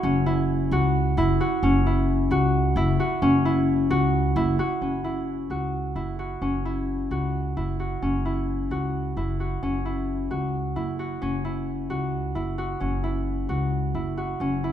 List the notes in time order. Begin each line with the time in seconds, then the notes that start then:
Already playing: E4 F#4
0.03 F#1 C#4
0.26 E4
0.71 C#2 F#4
1.17 F#1 E4
1.40 F#4
1.63 F#1 C#4
1.86 E4
2.31 C#2 F#4
2.76 F#1 E4
3.00 F#4
3.22 F#1 C#4
3.45 E4
3.90 C#2 F#4
4.36 F#1 E4
4.59 F#4
4.81 F#1 C#4
5.04 E4
5.50 C#2 F#4
5.95 F#1 E4
6.19 F#4
6.41 F#1 C#4
6.65 E4
7.11 C#2 F#4
7.57 F#1 E4
7.80 F#4
8.02 F#1 C#4
8.25 E4
8.71 C#2 F#4
9.17 F#1 E4
9.40 F#4
9.63 F#1 C#4
9.85 E4
10.31 C#2 F#4
10.76 F#1 E4
10.99 F#4
11.22 F#1 C#4
11.45 E4
11.90 C#2 F#4
12.35 F#1 E4
12.58 F#4
12.80 F#1 C#4
13.04 E4
13.49 C#2 F#4
13.94 F#1 E4
14.17 F#4
14.40 F#1 C#4
14.64 E4